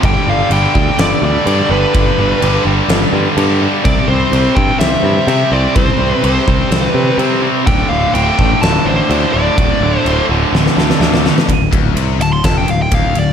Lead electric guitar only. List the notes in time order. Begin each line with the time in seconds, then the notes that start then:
0.05 G5
0.30 F5
0.53 G5
1.01 D5
1.25 D5
1.72 B4
3.85 D5
4.08 C5
4.55 G5
4.79 E5
5.29 E5
5.52 D5
5.76 C5
6.13 B4
6.25 C5
6.86 B4
7.67 G5
7.90 F5
8.14 G5
8.61 A5
8.86 C5
9.33 D5
9.98 C5
12.22 A5
12.33 C6
12.45 A5
12.58 G5
12.70 F5
12.82 G5
12.94 F5
13.19 D5